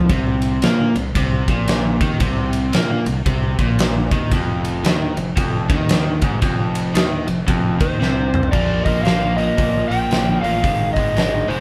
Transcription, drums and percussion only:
0.09 kick loud
0.09 ride medium
0.42 ride medium
0.62 snare loud
0.62 ride medium
0.96 ride medium
1.15 kick loud
1.15 ride medium
1.48 kick medium
1.48 ride medium
1.68 snare loud
1.68 ride medium
2.01 kick loud
2.01 ride medium
2.20 kick loud
2.20 ride medium
2.53 ride medium
2.73 snare loud
2.73 ride medium
3.06 ride medium
3.26 kick loud
3.26 ride medium
3.59 kick medium
3.59 ride medium
3.79 snare loud
3.79 ride medium
4.11 kick loud
4.11 ride medium
4.32 kick loud
4.32 ride medium
4.65 ride medium
4.85 snare loud
4.85 ride medium
5.17 ride medium
5.37 kick loud
5.37 ride medium
5.70 kick loud
5.70 ride medium
5.89 snare loud
5.89 ride loud
6.22 kick loud
6.22 ride medium
6.42 kick loud
6.42 ride medium
6.75 ride medium
6.95 snare loud
6.95 ride medium
7.28 ride medium
7.48 kick loud
7.48 ride medium
7.81 kick loud
7.81 ride medium
8.02 snare medium
8.34 mid tom medium
8.43 floor tom medium
8.53 kick loud
8.53 crash medium
8.86 kick medium
8.86 open hi-hat soft
9.05 snare medium
9.05 open hi-hat medium
9.38 open hi-hat soft
9.58 kick loud
9.58 open hi-hat medium
9.92 open hi-hat soft
10.11 snare loud
10.11 open hi-hat medium
10.44 open hi-hat soft
10.64 kick loud
10.64 open hi-hat medium
10.96 kick medium
10.96 open hi-hat medium
11.17 snare medium
11.17 open hi-hat medium
11.50 open hi-hat soft

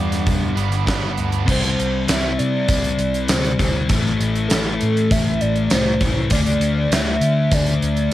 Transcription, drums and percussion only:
0.12 snare soft
0.12 closed hi-hat medium
0.27 kick loud
0.27 closed hi-hat medium
0.57 closed hi-hat medium
0.72 closed hi-hat medium
0.87 kick loud
0.87 snare loud
0.87 closed hi-hat medium
1.18 closed hi-hat medium
1.32 closed hi-hat medium
1.48 kick loud
1.48 crash loud
1.64 snare soft
1.64 closed hi-hat medium
1.80 closed hi-hat medium
2.08 snare loud
2.08 closed hi-hat loud
2.08 tambourine medium
2.39 closed hi-hat medium
2.69 kick loud
2.69 closed hi-hat loud
2.84 closed hi-hat medium
2.99 closed hi-hat medium
3.14 closed hi-hat soft
3.28 snare loud
3.28 closed hi-hat loud
3.28 tambourine medium
3.44 closed hi-hat soft
3.59 kick medium
3.59 closed hi-hat medium
3.89 kick loud
3.89 closed hi-hat loud
4.06 snare soft
4.21 closed hi-hat medium
4.35 closed hi-hat medium
4.50 snare loud
4.50 closed hi-hat loud
4.50 tambourine medium
4.81 closed hi-hat medium
4.97 closed hi-hat medium
5.11 kick loud
5.11 closed hi-hat loud
5.41 closed hi-hat medium
5.56 closed hi-hat soft
5.70 snare loud
5.70 closed hi-hat loud
5.70 tambourine medium
6.01 kick medium
6.01 closed hi-hat medium
6.30 kick loud
6.30 closed hi-hat loud
6.46 closed hi-hat medium
6.61 closed hi-hat medium
6.92 snare loud
6.92 closed hi-hat loud
6.92 tambourine loud
7.21 closed hi-hat medium
7.51 kick loud
7.51 closed hi-hat loud
7.66 closed hi-hat medium
7.82 closed hi-hat medium
7.97 closed hi-hat medium

